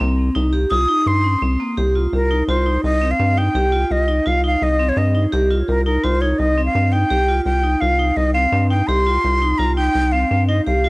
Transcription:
0.00 C2 C4
0.35 C2 D#4
0.53 G4
0.71 C2 F4 D#6
0.88 D#4
1.06 G2 C6
1.24 C#4
1.42 C2 C4
1.60 A#3
1.77 C2 G4
1.95 F4
2.13 C2 A#4
2.31 D#4
2.48 C2 F4 C5
2.66 D#4
2.84 C2 D#5
3.02 C4
3.11 F5
3.19 G2 C4
3.37 D#4 G5
3.55 C2 G4
3.72 F4
3.91 C2 D#5
4.08 D#4
4.26 C2 F4 F5
4.44 D#4 F5
4.62 C2 D#5
4.79 C4
4.89 C#5
4.97 G2 C4 D#5
5.15 D#4
5.32 C2 G4
5.50 F4
5.68 C2 A#4
5.86 D#4 A#4
6.04 C2 F4 C5
6.21 D#4 C#5
6.38 C2 D#5
6.58 C4
6.65 F5
6.75 G2 C4
6.92 D#4 G5
7.10 C2 G4
7.28 F4
7.45 C2 G5
7.64 D#4
7.81 C2 F4 F5
7.99 D#4
8.17 C2 D#5
8.34 C4 F5
8.52 G2 C4
8.70 D#4 G5
8.87 C2 G4 C6
9.07 F4
9.24 C2
9.42 D#4
9.58 C2 F4 A#5
9.76 D#4 G5
9.95 C2
10.12 C4 F5
10.31 G2 C4
10.47 D#4 D#5
10.66 C2 G4 F5
10.84 F4

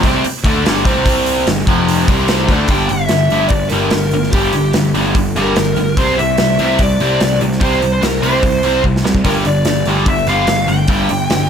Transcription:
0.03 C2 C3 G3 C4, kick, open hi-hat
0.23 muted picked electric bass stroke, muted overdriven electric guitar stroke, open hi-hat
0.44 D2 D3 A3 D4, kick, open hi-hat
0.64 G1 G2 D3 G3, snare, open hi-hat
0.85 C2 C3 G3 C4, kick, open hi-hat
1.06 kick, open hi-hat
1.26 open hi-hat
1.47 G1 G2 D3, snare, open hi-hat
1.58 snare
1.66 F1 F2 C3 F3, kick, open hi-hat
1.88 open hi-hat
2.08 C2 C3 G3 C4, kick, open hi-hat
2.28 snare, open hi-hat
2.48 D2 D3 A3, kick, open hi-hat
2.52 D4
2.68 G1 G2 D3 G3 G5, kick, open hi-hat
2.89 G1 G2 D3 E5, open hi-hat
3.09 G1 G2 D3, snare, open hi-hat
3.30 G1 G2 D3 G3, open hi-hat
3.48 G1 G2 D3 D5, kick, open hi-hat
3.68 G1 A#4, open hi-hat
3.72 G2 D3 G3
3.91 G1 G2 D3, snare, open hi-hat
4.11 G1 G2 D3, open hi-hat
4.23 snare
4.32 G1 G2 D3 G3 G4, kick, open hi-hat
4.53 G1 G2 D3, open hi-hat
4.73 G1 G2 D3, snare, open hi-hat
4.94 G1 G2 D3 G3, open hi-hat
5.15 G1 G2 D3, kick, open hi-hat
5.35 G1 G2 D3 G3 A#4, open hi-hat
5.56 G1 G2 D3, snare, open hi-hat
5.76 G1 G2 D3, open hi-hat
5.97 C2 C3 G3 C4 C5, kick, open hi-hat
6.18 C2 C3 G3 E5, open hi-hat
6.38 C2 C3 G3, snare, open hi-hat
6.59 C2 C3 G3 C4 E5, open hi-hat
6.79 C2 C3 G3 D5, kick, open hi-hat
7.00 C2 C3 G3 C4, open hi-hat
7.20 C2 C3 G3, snare, open hi-hat
7.41 C2 C3 G3, open hi-hat
7.52 snare
7.60 C2 C3 G3 C4 C5, kick, open hi-hat
7.82 C2 C3 G3, open hi-hat
7.93 C5
8.02 C2 C3 G3 A#4, snare, open hi-hat
8.22 C2 C3 G3 C4 C5, open hi-hat
8.42 C2 C3 G3, kick, open hi-hat
8.63 C2 C3 G3 C4, open hi-hat
8.84 C2 C3 G3, kick
8.96 snare
9.05 C2 C3 G3, snare
9.15 kick
9.25 G1 G2 D3 G3 A#4, kick, open hi-hat
9.45 G1 G2 D3 D5, open hi-hat
9.65 G1 G2 D3, snare, open hi-hat
9.86 G1 G2 D3 G3, open hi-hat
10.05 G1 G2 D3 E5, kick, open hi-hat
10.26 G1 G2 D3 G3 F5, open hi-hat
10.47 G1 G2 D3, snare, open hi-hat
10.68 G1 G2 D3 G5, open hi-hat
10.88 G1 G2 D3 G3, kick, open hi-hat
11.09 G1 G2 D3, open hi-hat
11.30 G1 G2 D3, snare, open hi-hat

